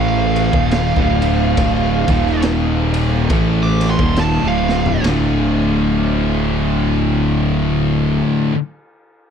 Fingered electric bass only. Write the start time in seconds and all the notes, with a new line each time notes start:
Already playing: A1
0.53 D#1
0.97 D1
1.58 D1
2.08 D#1
3.30 A1
3.99 D#1
4.43 D1
5.05 D1